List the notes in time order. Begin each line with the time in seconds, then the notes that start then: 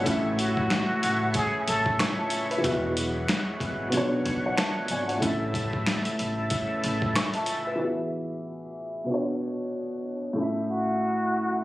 Already playing: C#5 F#5
0.01 A2 C#3 E3 A3 E4 C#5
0.06 A1 C#4 E4, kick, closed hi-hat
0.11 E5
0.37 F#4, closed hi-hat
0.57 kick
0.70 finger snap, snare, closed hi-hat
1.03 A1, closed hi-hat
1.34 G#4, kick, closed hi-hat
1.67 A1 A4, closed hi-hat
1.86 kick
1.99 G#5 C#6, finger snap, snare, closed hi-hat
2.19 E5 A5
2.30 closed hi-hat
2.50 B4 E5, closed hi-hat
2.58 E3 B3
2.63 E1 F#3 G#3 B3 F#4 G#4, kick, closed hi-hat
2.68 E5
2.97 closed hi-hat
3.29 finger snap, snare, closed hi-hat
3.60 G#1, kick, closed hi-hat
3.88 B2 B3
3.92 B1 D3 C#4 F#4 C#5, closed hi-hat
3.97 D4 C#5
4.26 B1, kick, closed hi-hat
4.46 C#5 F#5
4.57 E5 A5, finger snap, snare, closed hi-hat
4.88 G#1 D5 G#5, closed hi-hat
5.08 C#5 F#5, closed hi-hat
5.18 A2 A3
5.22 A1 C#3 E3 A3 C#4 E4 A4, kick, closed hi-hat
5.27 E5
5.54 kick, closed hi-hat
5.73 kick
5.87 finger snap, snare, closed hi-hat
6.05 closed hi-hat
6.19 A1, closed hi-hat
6.50 kick, closed hi-hat
6.84 A1, closed hi-hat
7.02 kick
7.16 G#5 C#6, finger snap, snare, closed hi-hat
7.34 E5 A5, closed hi-hat
7.46 closed hi-hat
7.66 B4 E5
7.75 E3 B3
7.80 F#4 G#4
7.85 E5
9.04 B2 B3
9.09 D4 F#4
9.14 C#5
10.33 A2 A3
10.38 C#4 E4
10.43 E5
10.70 F#4